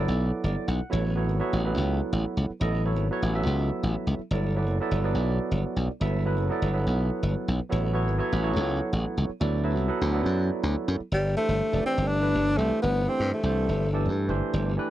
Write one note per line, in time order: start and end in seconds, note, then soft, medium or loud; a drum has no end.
0.00 0.80 F#3 medium
0.00 0.81 B3 medium
0.00 0.81 E4 medium
0.00 0.81 A4 medium
0.00 0.43 D5 medium
0.08 0.30 B1 medium
0.44 0.55 G1 medium
0.44 0.66 D5 medium
0.68 0.79 B1 medium
0.68 0.90 F#5 medium
0.81 muted slap bass stroke soft
0.90 1.29 A1 medium
0.90 1.12 F#3 medium
0.90 1.12 B3 medium
0.90 1.12 E4 medium
0.90 1.13 A4 medium
0.90 1.13 C#5 medium
1.15 1.37 F#3 medium
1.15 1.37 B3 medium
1.15 1.37 E4 medium
1.15 1.38 A4 medium
1.15 1.38 C#5 medium
1.29 1.40 G#1 medium
1.39 1.61 F#3 medium
1.39 1.61 B3 medium
1.39 1.62 E4 medium
1.39 1.62 A4 medium
1.39 1.62 C#5 medium
1.53 1.75 A1 medium
1.64 2.50 F#3 medium
1.64 2.50 B3 medium
1.64 2.50 E4 medium
1.64 2.51 A4 medium
1.64 2.51 B4 medium
1.77 2.00 C#2 medium
2.13 2.24 A1 medium
2.37 2.48 C#2 medium
2.50 muted slap bass stroke soft
2.60 2.97 A1 loud
2.60 2.82 F#3 medium
2.60 2.82 B3 medium
2.60 2.83 E4 medium
2.60 2.83 A4 medium
2.60 2.83 D#5 medium
2.85 3.07 F#3 medium
2.85 3.07 B3 medium
2.85 3.07 E4 medium
2.85 3.07 A4 medium
2.85 3.08 C#5 medium
2.97 3.09 G#1 medium
3.11 3.32 F#3 medium
3.11 3.32 B3 medium
3.11 3.32 E4 medium
3.11 3.33 A4 medium
3.11 3.33 C#5 medium
3.22 3.45 A1 medium
3.34 4.20 F#3 medium
3.34 4.20 B3 medium
3.34 4.20 E4 medium
3.34 4.20 A4 medium
3.34 4.20 E5 medium
3.46 3.69 C#2 medium
3.83 3.94 A1 medium
4.07 4.18 C#2 medium
4.19 muted slap bass stroke soft
4.31 4.67 G1 loud
4.31 4.53 F#3 medium
4.31 4.53 B3 medium
4.31 4.53 E4 medium
4.31 4.53 A4 medium
4.31 4.54 D5 medium
4.55 4.77 F#3 medium
4.55 4.77 B3 medium
4.55 4.77 E4 medium
4.55 4.78 A4 medium
4.55 4.78 D5 medium
4.67 4.79 F#1 medium
4.80 5.01 F#3 medium
4.80 5.02 B3 medium
4.80 5.02 E4 medium
4.80 5.02 A4 medium
4.80 5.02 D5 medium
4.91 5.14 G1 medium
5.03 5.89 F#3 medium
5.03 5.90 B3 medium
5.03 5.90 E4 medium
5.03 5.90 A4 medium
5.03 5.90 D5 medium
5.15 5.38 B1 medium
5.51 5.63 G1 medium
5.76 5.87 B1 medium
5.88 muted slap bass stroke soft
6.00 6.37 G1 loud
6.00 6.22 F#3 medium
6.00 6.22 B3 medium
6.00 6.23 E4 medium
6.00 6.23 A4 medium
6.00 6.23 E5 medium
6.25 6.47 F#3 medium
6.25 6.47 B3 medium
6.25 6.47 E4 medium
6.25 6.47 A4 medium
6.25 6.48 B4 medium
6.37 6.49 F#1 medium
6.49 6.71 F#3 medium
6.49 6.71 B3 medium
6.49 6.72 E4 medium
6.49 6.72 A4 medium
6.49 6.72 D5 medium
6.62 6.85 G1 medium
6.73 7.60 F#3 medium
6.73 7.59 B3 medium
6.73 7.60 E4 medium
6.73 7.60 A4 medium
6.73 7.60 B4 medium
6.87 7.09 B1 medium
7.23 7.34 G1 medium
7.48 7.59 B1 medium
7.60 muted slap bass stroke soft
7.69 8.08 A1 loud
7.69 7.92 F#3 medium
7.69 7.92 B3 medium
7.69 7.92 E4 medium
7.69 7.92 A4 medium
7.69 7.93 C#5 medium
7.93 8.16 F#3 medium
7.93 8.16 B3 medium
7.93 8.16 E4 medium
7.93 8.16 A4 medium
7.93 8.17 C#5 medium
8.08 8.20 G#1 medium
8.18 8.40 F#3 medium
8.18 8.41 B3 medium
8.18 8.41 E4 medium
8.18 8.41 A4 medium
8.18 8.41 C#5 medium
8.32 8.55 A1 medium
8.42 9.29 F#3 medium
8.42 9.29 B3 medium
8.42 9.30 E4 medium
8.42 9.30 A4 medium
8.42 9.30 C#5 medium
8.56 8.79 C#2 medium
8.93 9.04 A1 medium
9.17 9.29 C#2 medium
9.29 muted slap bass stroke soft
9.40 9.77 D2 loud
9.40 9.62 F#3 medium
9.40 9.62 B3 medium
9.40 9.63 E4 medium
9.40 9.63 A4 medium
9.40 9.63 D5 medium
9.63 9.86 F#3 medium
9.63 9.87 B3 medium
9.63 9.87 E4 medium
9.63 9.87 A4 medium
9.63 9.87 E5 medium
9.77 9.89 C2 medium
9.88 10.10 F#3 medium
9.88 10.11 B3 medium
9.88 10.11 E4 medium
9.88 10.11 A4 medium
9.88 10.11 B4 medium
10.01 10.25 D2 medium
10.12 10.99 F#3 medium
10.12 11.00 B3 medium
10.12 11.00 E4 medium
10.12 11.00 A4 medium
10.12 11.01 D5 medium
10.26 10.49 F#2 medium
10.63 10.75 D2 medium
10.88 10.99 F#2 medium
11.00 muted slap bass stroke soft
11.12 11.35 G1 medium
11.12 11.36 G3 medium
11.36 11.68 E3 medium
11.36 11.69 A3 medium
11.36 11.82 A3 medium
11.36 11.69 D4 medium
11.36 11.69 G4 medium
11.36 11.69 C5 medium
11.48 11.60 G1 medium
11.72 11.84 F1 medium
11.72 12.16 E3 medium
11.72 12.16 A3 medium
11.72 12.16 D4 medium
11.72 12.16 G4 medium
11.72 12.17 D5 medium
11.85 12.10 C4 medium
11.85 muted slap bass stroke soft
11.98 12.32 G1 medium
12.08 12.59 D4 medium
12.20 12.54 E3 medium
12.20 12.54 A3 medium
12.20 12.54 D4 medium
12.20 12.55 G4 medium
12.20 12.55 B4 medium
12.35 12.58 G1 medium
12.57 12.70 C2 medium
12.57 13.01 E3 medium
12.57 12.82 A3 medium
12.57 13.01 A3 medium
12.57 13.02 D4 medium
12.57 13.02 G4 medium
12.57 13.03 C5 medium
12.82 13.06 G1 medium
12.82 13.10 B3 medium
13.07 13.40 E3 medium
13.07 13.40 A3 medium
13.07 13.32 C4 medium
13.07 13.40 D4 medium
13.07 13.40 G4 medium
13.07 13.41 C5 medium
13.20 13.31 G2 medium
13.34 14.02 A3 medium
13.43 13.67 C2 medium
13.43 13.87 E3 medium
13.43 13.87 A3 medium
13.43 13.88 D4 medium
13.43 13.88 G4 medium
13.43 13.88 C5 medium
13.69 14.07 G1 medium
13.93 14.25 E3 medium
13.93 14.25 A3 medium
13.93 14.26 D4 medium
13.93 14.26 G4 medium
13.93 14.26 A4 medium
14.06 14.30 G2 medium
14.28 14.41 G1 medium
14.28 14.72 E3 medium
14.28 14.72 A3 medium
14.28 14.73 D4 medium
14.28 14.73 G4 medium
14.28 14.73 C5 medium
14.54 14.77 G1 medium
14.76 14.90 E3 medium
14.76 14.90 A3 medium
14.76 14.90 D4 medium
14.76 14.90 G4 medium
14.76 14.90 B4 medium